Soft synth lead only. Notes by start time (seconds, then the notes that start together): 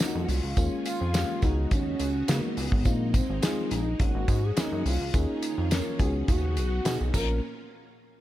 0.00 D#4
0.22 F#4
0.29 F4
0.86 F4
1.43 D#4
1.72 C#4
2.29 A#3
2.58 B3
2.86 A#3
3.14 C4
3.43 F4
3.71 D#4
4.00 F#4
4.44 G#4
4.58 D#4
4.86 F4
5.14 D#4
5.71 C#4
6.29 F#4
7.14 A#4